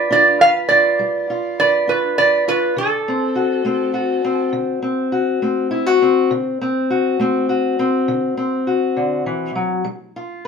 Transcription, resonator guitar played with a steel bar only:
0.00 0.11 D5 medium
0.12 0.42 D5 medium
0.41 0.49 F5 loud
0.69 1.58 D5 medium
1.60 1.89 D5 medium
1.89 2.16 B4 medium
2.18 2.45 D5 medium
2.48 2.75 B4 medium
2.78 4.50 A4 medium

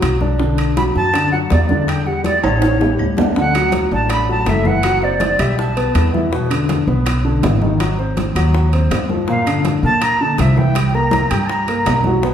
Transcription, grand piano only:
0.00 0.15 F#3 medium
0.00 0.15 F#4 medium
0.21 0.36 D4 medium
0.21 0.37 D5 medium
0.40 0.70 D3 medium
0.40 0.70 D4 medium
0.77 1.08 F#3 medium
0.77 1.08 F#4 medium
1.15 1.30 D3 medium
1.15 1.30 D4 medium
1.33 1.63 F#3 medium
1.33 1.63 F#4 medium
1.70 2.01 D3 medium
1.70 2.01 D4 medium
2.07 2.37 G3 medium
2.07 2.38 G4 medium
2.44 2.75 C#3 medium
2.44 2.75 C#4 medium
2.81 3.11 G3 medium
2.81 3.11 G4 medium
3.18 3.33 D4 medium
3.18 3.33 D5 medium
3.37 3.52 D3 medium
3.37 3.52 D4 medium
3.55 3.85 F#3 medium
3.55 3.86 F#4 medium
3.92 4.23 D4 medium
3.92 4.23 D5 medium
4.29 4.44 F#3 medium
4.29 4.44 F#4 medium
4.48 4.63 A3 medium
4.48 4.63 A4 medium
4.67 4.82 E3 medium
4.67 4.82 E4 medium
4.84 5.00 F#3 medium
4.84 5.00 F#4 medium
5.03 5.33 C4 medium
5.03 5.33 C5 medium
5.39 5.70 G3 medium
5.39 5.70 G4 medium
5.77 6.07 B3 medium
5.77 6.07 B4 medium
6.14 6.29 E3 medium
6.14 6.29 E4 medium
6.32 6.47 B2 medium
6.32 6.48 B3 medium
6.51 6.81 D3 medium
6.51 6.81 D4 medium
6.88 7.18 B3 medium
6.88 7.18 B4 medium
7.25 7.40 D3 medium
7.25 7.40 D4 medium
7.44 7.59 E3 medium
7.44 7.59 E4 medium
7.62 7.77 D#3 medium
7.62 7.77 D#4 medium
7.80 7.95 F#3 medium
7.80 7.96 F#4 medium
7.98 8.29 C4 medium
7.98 8.29 C5 medium
8.36 8.66 F#3 medium
8.36 8.66 F#4 medium
8.73 9.03 C4 medium
8.73 9.03 C5 medium
9.10 9.25 F3 medium
9.10 9.25 F4 medium
9.29 9.43 A#2 medium
9.29 9.44 A#3 medium
9.47 9.77 D3 medium
9.47 9.77 D4 medium
9.84 10.14 A#3 medium
9.84 10.14 A#4 medium
10.21 10.36 D3 medium
10.21 10.36 D4 medium
10.40 10.54 F3 medium
10.40 10.54 F4 medium
10.58 10.73 E3 medium
10.58 10.73 E4 medium
10.75 10.91 G3 medium
10.75 10.91 G4 medium
10.94 11.25 A#3 medium
10.94 11.25 A#4 medium
11.31 11.62 G3 medium
11.31 11.62 G4 medium
11.68 11.98 A#3 medium
11.68 11.99 A#4 medium
12.06 12.21 F#3 medium
12.06 12.21 F#4 medium
12.24 12.34 B2 medium
12.24 12.34 B3 medium

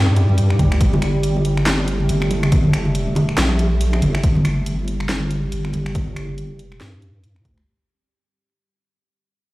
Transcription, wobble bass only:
0.00 0.58 G2 loud
0.59 0.79 D2 loud
0.81 2.08 G1 loud
2.09 3.36 G1 loud
3.38 4.01 A#1 loud
4.02 4.22 G1 loud
4.24 5.51 G1 medium
5.52 6.41 G1 loud
6.41 6.67 F#1 loud
6.67 6.79 F1 loud
6.81 7.44 G2 loud
7.45 7.65 D2 medium

